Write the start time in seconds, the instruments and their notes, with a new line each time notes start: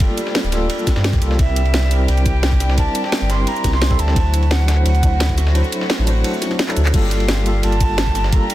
Already playing: tine electric piano G3 A3 G4 A4, string section G3 D4 F4 G4
0.00 tine electric piano A#3 F4 A4, kick, closed hi-hat, ride
0.18 closed hi-hat, ride, shaker
0.27 snare
0.35 snare, closed hi-hat, ride
0.44 sub bass D1, shaker
0.50 tine electric piano G3 A#3 F4, snare, closed hi-hat, ride, shaker
0.55 tine electric piano A4
0.70 closed hi-hat, ride
0.79 shaker
0.87 kick, snare, closed hi-hat, ride, shaker
0.96 sub bass G2, snare
1.04 snare, closed hi-hat, ride
1.13 kick, snare, shaker
1.21 sub bass C2, tine electric piano G3 A#3 F4 A4, closed hi-hat, ride, shaker
1.31 snare
1.37 sub bass C2, tine electric piano G3 C4 E4, string section D4 E4 G4, flute E5, kick, closed hi-hat, ride
1.56 closed hi-hat, ride, shaker
1.65 ride
1.74 snare, closed hi-hat, ride
1.83 snare
1.89 tine electric piano G3 C4 E4, closed hi-hat, ride, shaker
1.93 tine electric piano A#4
2.08 sub bass C2, flute G5, closed hi-hat, ride
2.17 ride, shaker
2.26 kick, closed hi-hat, ride, shaker
2.43 snare, closed hi-hat, ride
2.52 kick
2.60 snare, closed hi-hat, ride, shaker
2.69 snare
2.75 tine electric piano G3 C4 E4, flute A5, kick, closed hi-hat, ride
2.80 tine electric piano A#4
2.95 closed hi-hat, ride, shaker
3.04 flute G5, snare
3.12 snare, closed hi-hat, ride
3.21 sub bass G1
3.27 tine electric piano G3 C4 E4, flute C6, snare, closed hi-hat, ride, shaker
3.32 tine electric piano A#4
3.47 flute A#5, closed hi-hat, ride
3.56 shaker
3.64 sub bass C2, kick, snare, closed hi-hat, ride, shaker
3.73 flute C6, snare
3.82 snare, closed hi-hat, ride
3.89 tine electric piano G3 C4 E4 A4, kick, snare
3.99 sub bass D2, flute A5, closed hi-hat, ride, shaker
4.08 snare
4.14 sub bass D2, tine electric piano F#3 D4 E4, string section A3 C4 F#4, kick, closed hi-hat, ride
4.19 tine electric piano C5
4.34 closed hi-hat, ride, shaker
4.43 ride
4.51 flute F#5, snare, closed hi-hat, ride
4.60 snare
4.66 tine electric piano F#3 D4 E4, snare, closed hi-hat, ride, shaker
4.71 tine electric piano C5
4.86 sub bass D2, flute F#5, closed hi-hat, ride
4.95 ride, shaker
5.03 kick, closed hi-hat, ride, shaker
5.20 snare, closed hi-hat, ride
5.29 kick
5.38 snare, closed hi-hat, ride, shaker
5.47 snare
5.53 tine electric piano F#3 D4 E4, closed hi-hat, ride
5.57 tine electric piano C5
5.64 shaker
5.72 closed hi-hat, ride, shaker
5.81 snare
5.90 snare, closed hi-hat, ride
5.99 sub bass A1
6.05 tine electric piano F#3 D4 E4, closed hi-hat, ride, shaker
6.09 tine electric piano C5
6.24 closed hi-hat, ride
6.34 shaker
6.42 snare, closed hi-hat, ride, shaker
6.51 snare, ride
6.59 snare, closed hi-hat, ride
6.67 tine electric piano F#3 D4 E4 A4, snare, clap
6.76 sub bass D2, closed hi-hat, ride, shaker
6.85 snare, clap
6.92 sub bass G1, tine electric piano G3 A#3 F4, string section G3 D4 F4 G4, flute F5, kick, closed hi-hat, crash, ride
6.96 tine electric piano A4
7.11 closed hi-hat, ride, shaker
7.20 ride
7.28 snare, closed hi-hat, ride
7.38 snare
7.44 tine electric piano G3 A#3 F4, closed hi-hat, ride, shaker
7.48 tine electric piano A4
7.63 sub bass G1, flute A5, closed hi-hat, ride
7.72 ride, shaker
7.81 kick, closed hi-hat, ride, shaker
7.98 snare, closed hi-hat, ride
8.07 kick
8.15 snare, closed hi-hat, ride, shaker
8.24 snare
8.30 tine electric piano G3 A#3 F4, flute A#5, kick, closed hi-hat, ride
8.35 tine electric piano A4
8.50 closed hi-hat, ride, shaker